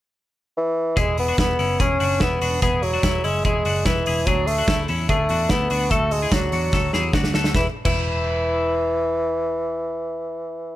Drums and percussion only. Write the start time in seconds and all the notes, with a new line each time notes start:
0.97 kick, closed hi-hat
1.18 open hi-hat
1.38 kick, snare, closed hi-hat
1.59 open hi-hat
1.80 kick, closed hi-hat
2.00 open hi-hat
2.20 kick, snare, closed hi-hat
2.41 open hi-hat
2.62 kick, closed hi-hat
2.83 open hi-hat
3.03 kick, snare, closed hi-hat
3.24 open hi-hat
3.45 kick, closed hi-hat
3.65 open hi-hat
3.85 kick, snare, closed hi-hat
4.06 open hi-hat
4.27 kick, closed hi-hat
4.47 open hi-hat
4.67 kick, snare, closed hi-hat
4.88 open hi-hat
5.09 kick, closed hi-hat
5.29 open hi-hat
5.49 kick, snare, closed hi-hat
5.70 open hi-hat
5.91 kick, closed hi-hat
6.11 open hi-hat
6.31 kick, snare, closed hi-hat
6.52 open hi-hat
6.73 kick, snare
6.93 snare
7.13 kick, snare
7.24 snare
7.34 snare
7.44 snare
7.55 kick, snare
7.85 kick, crash